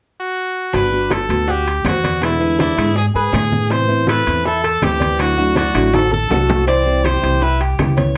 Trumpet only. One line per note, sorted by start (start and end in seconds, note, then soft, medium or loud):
0.20 0.71 F#4 medium
0.76 1.14 B4 medium
1.13 1.52 A4 medium
1.50 1.86 G4 medium
1.88 2.21 F#4 medium
2.24 2.58 E4 medium
2.61 2.95 E4 medium
2.98 3.06 G#4 medium
3.16 3.73 G#4 medium
3.71 4.08 C5 medium
4.10 4.43 B4 medium
4.47 4.85 A4 medium
4.84 5.22 G4 loud
5.20 5.57 F#4 medium
5.57 5.96 F#4 medium
5.94 6.12 A4 medium
6.13 6.64 A4 medium
6.68 7.06 D5 loud
7.05 7.45 C5 medium
7.43 7.61 B4 medium